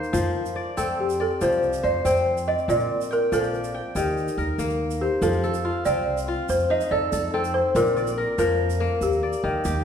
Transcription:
Already playing: D#3 A#3 A#4 C5
0.03 shaker
0.13 F2 F3, shaker
0.46 shaker
0.56 D5
0.77 F2 C4 A4, shaker
1.00 G4
1.10 shaker
1.20 A4 D5
1.41 C2 F3 C5, shaker
1.52 shaker
1.63 shaker
1.73 shaker
1.83 F2 C5 D5, shaker
2.05 F2 C4 C5, shaker
2.16 shaker
2.37 shaker
2.48 D5 D#5
2.58 shaker
2.68 A#1 A#2 D5, shaker
2.80 shaker
3.01 shaker
3.11 A#4 G5, shaker
3.32 A#1 F3 A4 D5, shaker
3.43 shaker
3.54 shaker
3.64 shaker
3.74 G5
3.95 D#2 D#3 G4, shaker
4.17 shaker
4.28 shaker
4.37 D#2 A#4, shaker
4.58 D#2 A#3, shaker
4.70 shaker
4.91 shaker
5.01 G4 C5
5.22 F2 F3 A4, shaker
5.33 shaker
5.44 A4, shaker
5.54 shaker
5.65 F4
5.85 C2 C4 F4 D5, shaker
6.17 shaker
6.28 F4
6.49 F2 C5, shaker
6.60 shaker
6.70 D#4 D#5
6.81 shaker
6.91 F2 A4 D5
7.12 F2 A4, shaker
7.34 C4 A4
7.44 shaker
7.54 C5
7.75 A#1 A#2 A#4, shaker
7.86 shaker
7.97 D5, shaker
8.07 shaker
8.18 A#4
8.38 F2 F3 A#4, shaker
8.70 shaker
8.80 A#3
9.01 D#2 G4, shaker
9.12 shaker
9.23 D5
9.33 shaker
9.44 D#2 D#3
9.65 D#2 G4, shaker

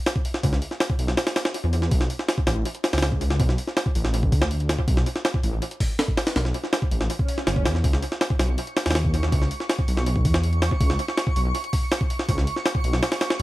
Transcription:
0.06 snare, open hi-hat
0.16 kick
0.25 open hi-hat
0.34 snare
0.43 C#2, kick, open hi-hat
0.53 snare
0.62 open hi-hat
0.71 snare
0.80 snare, open hi-hat
0.90 kick
0.99 B1, open hi-hat
1.08 snare
1.17 snare, open hi-hat
1.27 snare, open hi-hat
1.36 snare, open hi-hat
1.45 snare
1.54 open hi-hat
1.64 E2
1.73 open hi-hat
1.82 snare
1.91 B1, kick, open hi-hat
2.01 snare
2.10 open hi-hat
2.19 snare
2.29 snare, open hi-hat
2.38 kick
2.47 A1, snare, open hi-hat
2.65 open hi-hat
2.75 closed hi-hat
2.84 snare, open hi-hat
2.93 C#2, snare, open hi-hat
2.98 snare, open hi-hat
3.02 snare, open hi-hat
3.12 kick
3.21 open hi-hat
3.30 snare
3.40 B1, kick, open hi-hat
3.49 snare
3.58 open hi-hat
3.67 snare
3.77 snare, open hi-hat
3.86 kick
3.95 A1, open hi-hat
4.05 snare
4.14 open hi-hat
4.23 kick
4.32 D2, kick, open hi-hat
4.42 snare
4.51 open hi-hat
4.60 closed hi-hat
4.69 snare, open hi-hat
4.79 kick
4.88 B1, kick, open hi-hat
4.97 snare
5.06 open hi-hat
5.16 snare
5.25 snare, open hi-hat
5.34 kick
5.43 A1, open hi-hat
5.62 open hi-hat
5.71 closed hi-hat
5.80 kick, open hi-hat
5.99 snare, open hi-hat
6.08 kick
6.17 snare, open hi-hat
6.27 snare, open hi-hat
6.36 B1, snare, open hi-hat
6.45 snare
6.54 open hi-hat
6.64 snare
6.73 snare, open hi-hat
6.82 kick
6.91 A1, open hi-hat
7.01 snare
7.10 open hi-hat, swell
7.19 kick
7.28 open hi-hat
7.38 snare
7.47 F#1, snare, open hi-hat
7.56 kick
7.66 E2, snare, open hi-hat
7.75 snare
7.84 C#2 C#6, kick, open hi-hat
7.93 snare
8.03 open hi-hat
8.12 snare
8.21 snare, open hi-hat
8.30 kick
8.39 B1, snare, open hi-hat
8.58 open hi-hat
8.67 closed hi-hat
8.77 snare, open hi-hat
8.86 D#2, snare, open hi-hat
8.91 snare, open hi-hat
8.95 snare, open hi-hat
9.04 kick
9.14 open hi-hat
9.23 snare
9.32 C#2, kick, open hi-hat
9.42 snare
9.51 open hi-hat
9.60 snare
9.70 snare, open hi-hat
9.79 kick
9.88 B1, open hi-hat
9.97 snare
10.06 open hi-hat
10.16 kick
10.25 E2, kick, open hi-hat
10.34 snare
10.44 open hi-hat
10.53 closed hi-hat
10.62 snare, open hi-hat
10.71 kick
10.80 C#2, kick, open hi-hat
10.90 snare
10.99 open hi-hat
11.08 snare
11.17 snare, open hi-hat
11.27 kick
11.36 B1, open hi-hat
11.55 open hi-hat
11.64 closed hi-hat
11.73 kick, open hi-hat
11.92 snare, open hi-hat
12.01 kick
12.10 open hi-hat
12.19 snare
12.29 C#2, kick, open hi-hat
12.38 snare
12.47 open hi-hat
12.56 snare
12.66 snare, open hi-hat
12.75 kick
12.84 B1, open hi-hat
12.93 snare
13.03 snare, open hi-hat
13.12 snare, open hi-hat
13.21 snare, open hi-hat
13.30 snare

